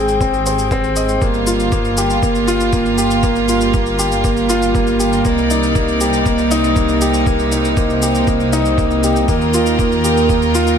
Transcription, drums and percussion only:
0.08 shaker
0.21 kick, shaker
0.34 shaker
0.46 shaker
0.59 shaker
0.71 kick, shaker
0.84 shaker
0.96 shaker
1.09 shaker
1.21 kick, shaker
1.34 shaker
1.47 shaker
1.59 shaker
1.72 kick, shaker
1.85 shaker
1.97 shaker
2.10 shaker
2.23 kick, shaker
2.35 shaker
2.48 shaker
2.60 shaker
2.73 kick, shaker
2.86 shaker
2.98 shaker
3.11 shaker
3.23 kick, shaker
3.36 shaker
3.48 shaker
3.61 shaker
3.74 kick, shaker
3.86 shaker
3.99 shaker
4.12 shaker
4.24 kick, shaker
4.37 shaker
4.49 shaker
4.62 shaker
4.75 kick, shaker
4.87 shaker
5.00 shaker
5.13 shaker
5.25 kick, shaker
5.38 shaker
5.50 shaker
5.63 shaker
5.75 kick, shaker
5.88 shaker
6.01 shaker
6.13 shaker
6.26 kick, shaker
6.38 shaker
6.51 shaker
6.64 shaker
6.76 kick, shaker
6.89 shaker
7.01 shaker
7.14 shaker
7.27 kick, shaker
7.39 shaker
7.52 shaker
7.65 shaker
7.77 kick, shaker
7.90 shaker
8.02 shaker
8.15 shaker
8.27 kick, shaker
8.40 shaker
8.53 shaker
8.65 shaker
8.78 kick, shaker
8.91 shaker
9.03 shaker
9.16 shaker
9.28 kick, shaker
9.41 shaker
9.54 shaker
9.66 shaker
9.79 kick, shaker
9.92 shaker
10.04 shaker
10.17 shaker
10.29 kick, shaker
10.42 shaker
10.55 shaker
10.67 shaker

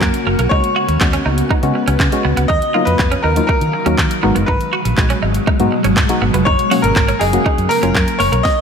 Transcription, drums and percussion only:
0.01 kick, clap
0.14 closed hi-hat
0.39 closed hi-hat
0.51 kick
0.64 closed hi-hat
0.89 closed hi-hat
1.01 kick, clap
1.13 closed hi-hat
1.38 closed hi-hat
1.51 kick
1.63 closed hi-hat
1.88 closed hi-hat
2.00 kick, clap
2.12 closed hi-hat
2.37 closed hi-hat
2.50 kick
2.62 closed hi-hat
2.87 closed hi-hat
2.99 kick, clap
3.12 closed hi-hat
3.36 closed hi-hat
3.49 kick
3.61 closed hi-hat
3.86 closed hi-hat
3.98 kick, clap
4.11 closed hi-hat
4.36 closed hi-hat
4.48 kick
4.61 closed hi-hat
4.85 closed hi-hat
4.97 kick, clap
5.10 closed hi-hat
5.34 closed hi-hat
5.47 kick
5.60 closed hi-hat
5.84 closed hi-hat
5.97 kick, clap
6.09 closed hi-hat
6.34 closed hi-hat
6.47 kick
6.59 closed hi-hat
6.71 open hi-hat
6.84 closed hi-hat
6.96 kick, clap
7.09 closed hi-hat
7.21 open hi-hat
7.33 closed hi-hat
7.46 kick
7.58 closed hi-hat
7.71 open hi-hat
7.83 closed hi-hat
7.95 kick, clap
8.08 closed hi-hat
8.20 open hi-hat
8.33 closed hi-hat
8.45 kick, snare

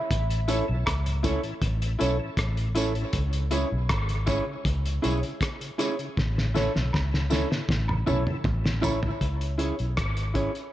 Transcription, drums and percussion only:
0.11 kick, closed hi-hat
0.30 closed hi-hat
0.48 closed hi-hat, tambourine
0.86 kick, cross-stick, closed hi-hat, high woodblock
1.06 closed hi-hat
1.24 kick, closed hi-hat, tambourine
1.43 closed hi-hat
1.62 kick, closed hi-hat
1.82 closed hi-hat
2.01 closed hi-hat, tambourine
2.37 kick, cross-stick, closed hi-hat
2.57 closed hi-hat
2.75 closed hi-hat, tambourine
2.95 closed hi-hat
3.13 kick, closed hi-hat
3.33 closed hi-hat
3.51 closed hi-hat, tambourine
3.89 kick, cross-stick, closed hi-hat, high woodblock
4.09 closed hi-hat
4.27 kick, cross-stick, closed hi-hat, tambourine
4.65 kick, closed hi-hat
4.86 closed hi-hat
5.04 closed hi-hat, tambourine
5.23 closed hi-hat
5.41 kick, cross-stick, closed hi-hat
5.61 closed hi-hat
5.79 cross-stick, closed hi-hat, tambourine
5.99 closed hi-hat
6.17 kick, snare
6.38 snare
6.55 snare, tambourine
6.76 snare
6.93 kick, snare, high woodblock
7.14 snare
7.30 snare, tambourine
7.52 snare
7.69 kick, snare
7.88 mid tom, high woodblock
8.07 mid tom, tambourine
8.27 mid tom
8.44 kick, floor tom
8.66 snare
8.83 floor tom, tambourine, high woodblock
9.03 floor tom
9.21 kick, closed hi-hat
9.41 closed hi-hat
9.59 closed hi-hat
9.79 closed hi-hat
9.97 kick, cross-stick, closed hi-hat
10.17 closed hi-hat
10.35 kick, closed hi-hat
10.55 closed hi-hat

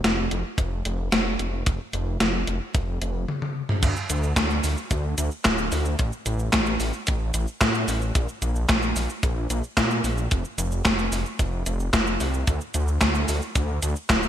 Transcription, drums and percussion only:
0.04 snare, closed hi-hat
0.31 closed hi-hat
0.58 kick, closed hi-hat
0.85 closed hi-hat
1.12 snare, closed hi-hat
1.39 closed hi-hat
1.66 kick, closed hi-hat
1.93 closed hi-hat
2.20 snare, closed hi-hat
2.47 closed hi-hat
2.75 kick, closed hi-hat
3.02 closed hi-hat
3.29 high tom
3.42 high tom
3.69 mid tom
3.83 kick, closed hi-hat, crash, cabasa
3.96 cabasa
4.10 closed hi-hat, cabasa
4.23 cabasa
4.36 kick, snare, clap, closed hi-hat, cabasa
4.50 cabasa
4.64 open hi-hat, cabasa
4.77 cabasa
4.91 kick, closed hi-hat, cabasa
5.18 closed hi-hat, cabasa
5.31 cabasa
5.45 kick, snare, clap, closed hi-hat, cabasa
5.58 cabasa
5.72 open hi-hat, cabasa
5.85 cabasa
5.99 kick, closed hi-hat, cabasa
6.12 cabasa
6.26 closed hi-hat, cabasa
6.39 cabasa
6.53 kick, snare, clap, closed hi-hat, cabasa
6.66 cabasa
6.80 open hi-hat, cabasa
6.93 cabasa
7.07 kick, closed hi-hat, cabasa
7.34 closed hi-hat, cabasa
7.47 cabasa
7.61 kick, snare, clap, closed hi-hat, cabasa
7.74 cabasa
7.88 open hi-hat, cabasa
8.02 cabasa
8.15 kick, closed hi-hat, cabasa
8.29 cabasa
8.42 closed hi-hat, cabasa
8.56 cabasa
8.69 kick, snare, clap, closed hi-hat, cabasa
8.82 cabasa
8.96 open hi-hat, cabasa
9.10 cabasa
9.23 kick, closed hi-hat, cabasa
9.50 closed hi-hat, cabasa
9.64 cabasa
9.77 kick, snare, clap, closed hi-hat, cabasa
9.91 cabasa
10.04 open hi-hat, cabasa
10.18 cabasa
10.31 kick, closed hi-hat, cabasa
10.45 cabasa
10.58 closed hi-hat, cabasa
10.72 cabasa
10.85 kick, snare, clap, closed hi-hat, cabasa
10.99 cabasa
11.12 open hi-hat, cabasa
11.26 cabasa
11.39 kick, closed hi-hat, cabasa
11.66 closed hi-hat, cabasa
11.80 cabasa
11.93 kick, snare, clap, closed hi-hat, cabasa
12.07 cabasa
12.20 open hi-hat, cabasa
12.34 cabasa
12.47 kick, closed hi-hat, cabasa
12.61 cabasa
12.74 closed hi-hat, cabasa
12.88 cabasa
13.01 kick, snare, clap, closed hi-hat, cabasa
13.15 cabasa
13.28 open hi-hat, cabasa
13.42 cabasa
13.55 kick, closed hi-hat, cabasa
13.82 closed hi-hat, cabasa
13.96 cabasa
14.09 kick, snare, clap, closed hi-hat, cabasa
14.23 cabasa

